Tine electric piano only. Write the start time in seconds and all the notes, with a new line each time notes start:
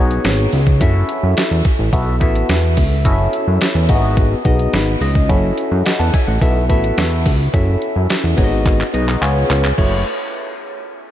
Already playing: B3 D#4 F#4 G#4 C#5
0.81 C#4 E4 F#4 A4 E5
1.93 B3 E4 F#4 A4 E5
2.20 B3 E4 F#4 A4 E5
3.05 C#4 E4 F#4 A4 D#5
3.12 E5
3.89 A#3 D#4 F#4 G#4 D#5
3.96 B3
4.45 B3 D#4 F#4 G#4 D#5
4.73 B5
5.02 D#5
5.29 C#4 E4 F#4 A4 E5
5.85 D#5 F#5
5.99 F#5 A5
6.14 E5 G#5
6.27 D#5 F#5
6.41 B3 E4 F#4 A4 E5
6.69 B3 E4 F#4 A4 E5
7.53 C#4 E4 F#4 A4 E5
8.37 B3 D#4 F#4 G#4 C#5
8.44 D#5
8.94 B3 D#4 F#4 G#4 D#5
9.21 B3 C#4 F4 G#4 C#5
9.78 A3 E4 F#4 C#5